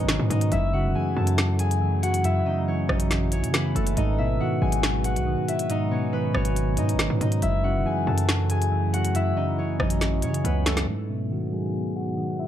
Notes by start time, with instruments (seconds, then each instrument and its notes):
Already playing: synth keys G#2 B2 D#3 F#3, ambient pad G#3 F#4 B4, harp B3 C#4 D#4 F#4 B4 C#5 D#5
0.03 808-style bass G#1
0.09 synth keys D#3, snare, closed hi-hat
0.19 808-style bass G#2
0.30 808-style bass G#2, harp D#4 D#5, closed hi-hat
0.41 closed hi-hat
0.52 808-style bass F#1, synth keys F#2, ambient pad F#3 A3 E4, harp E4 E5, closed hi-hat
0.73 synth keys C#3, harp F#4 F#5
0.84 808-style bass E1
0.95 synth keys E3, harp G#4 G#5
1.16 808-style bass F#2, synth keys F#3, harp A4 A5
1.27 closed hi-hat
1.38 snare, closed hi-hat
1.59 harp G#4 G#5, closed hi-hat
1.71 closed hi-hat
1.81 synth keys E3
2.03 harp F#4 F#5, closed hi-hat
2.14 closed hi-hat
2.24 synth keys F#2, harp E4 E5, closed hi-hat
2.46 synth keys C#3, harp D#4 D#5
2.68 synth keys E3, harp C#4 C#5
2.89 808-style bass A1, synth keys F#3, harp D#4 D#5, cross-stick
3.00 closed hi-hat
3.11 snare, closed hi-hat
3.32 harp C#4 C#5, closed hi-hat
3.43 808-style bass C#3, closed hi-hat
3.54 synth keys E3, harp B3 B4, snare, closed hi-hat
3.75 808-style bass F#1, harp A3 A4, closed hi-hat
3.87 closed hi-hat
3.97 808-style bass G#1, synth keys G#2, ambient pad G#3 F#4 B4, harp D#4 D#5, closed hi-hat
4.18 808-style bass A1, synth keys B2, harp E4 E5
4.29 808-style bass G#1
4.40 synth keys D#3, harp F#4 F#5
4.62 808-style bass G#1, synth keys F#3, harp G#4 G#5
4.72 closed hi-hat
4.83 snare, closed hi-hat
5.04 harp F#4 F#5, closed hi-hat
5.16 808-style bass B1, closed hi-hat
5.27 synth keys D#3
5.48 harp E4 E5, closed hi-hat
5.59 closed hi-hat
5.70 synth keys G#2, harp D#4 D#5, closed hi-hat
5.91 synth keys B2, harp C#4 C#5
6.13 synth keys D#3, harp B3 B4
6.34 808-style bass G#1, synth keys F#3, harp C#4 C#5, cross-stick
6.45 closed hi-hat
6.56 closed hi-hat
6.77 808-style bass G#2, harp D#4 D#5, closed hi-hat
6.89 closed hi-hat
6.94 808-style bass G#1
6.99 synth keys D#3, snare, closed hi-hat
7.10 808-style bass G#2
7.21 808-style bass G#2, harp D#4 D#5, closed hi-hat
7.32 closed hi-hat
7.42 808-style bass F#1, synth keys F#2, ambient pad F#3 A3 E4, harp E4 E5, closed hi-hat
7.64 synth keys C#3, harp F#4 F#5
7.75 808-style bass E1
7.86 synth keys E3, harp G#4 G#5
8.07 808-style bass F#2, synth keys F#3, harp A4 A5
8.18 closed hi-hat
8.29 snare, closed hi-hat
8.50 harp G#4 G#5, closed hi-hat
8.62 closed hi-hat
8.72 synth keys E3
8.93 harp F#4 F#5, closed hi-hat
9.05 closed hi-hat
9.15 synth keys F#2, harp E4 E5, closed hi-hat
9.37 synth keys C#3, harp D#4 D#5
9.58 synth keys E3, harp C#4 C#5
9.79 808-style bass A1, synth keys F#3, harp D#4 D#5, cross-stick
9.90 closed hi-hat
10.01 snare, closed hi-hat
10.22 808-style bass C#3, harp C#4 C#5, closed hi-hat
10.34 closed hi-hat
10.45 808-style bass C#2, synth keys E3, harp B3 B4, closed hi-hat
10.66 harp A3 A4, snare, closed hi-hat
10.77 snare, closed hi-hat
10.88 ambient pad G#2 F#3 B3, synth keys G#2, harp D#4
11.09 synth keys B2, harp E4 E5
11.31 synth keys D#3, harp F#4 F#5
11.52 synth keys F#3, harp G#4 G#5
11.95 harp F#4 F#5
12.17 synth keys D#3
12.39 harp E4 E5